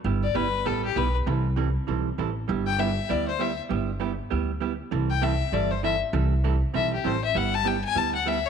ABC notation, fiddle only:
X:1
M:4/4
L:1/8
Q:"Swing" 1/4=197
K:G
V:1 name="Fiddle"
z d B2 A G B z | z8 | z g e2 d c e z | z8 |
z g e2 d c e z | z4 e G c e | f a g _a =a f e ^c |]